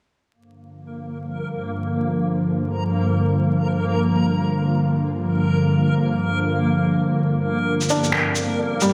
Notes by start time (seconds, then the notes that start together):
0.34 G2 D3 F3 A#3 A#4
7.67 C4
7.81 shaker
7.89 D4, shaker
8.04 shaker
8.12 finger snap
8.36 shaker
8.81 G3, shaker